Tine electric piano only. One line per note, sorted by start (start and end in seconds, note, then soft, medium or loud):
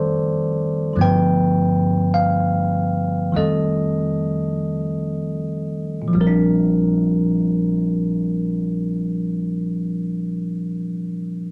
0.00 0.95 D#3 soft
0.00 0.96 G3 soft
0.00 0.96 A3 soft
0.00 1.00 C4 soft
0.00 0.99 A4 soft
0.00 1.04 C5 medium
0.00 0.99 D5 medium
0.93 3.33 D3 soft
0.93 3.34 F3 soft
0.93 3.34 A3 soft
0.99 3.35 B3 soft
0.99 3.33 B4 medium
0.99 2.17 G5 medium
2.14 3.39 F5 medium
3.32 6.13 D#3 soft
3.32 6.14 G3 soft
3.32 6.15 A3 soft
3.36 6.16 C4 soft
3.36 6.12 A4 soft
3.36 5.62 D#5 medium
6.02 10.68 A#2 soft
6.08 10.74 F3 soft
6.15 10.81 G3 soft
6.20 10.87 C4 soft
6.20 10.83 A#4 medium
6.27 10.93 D4 soft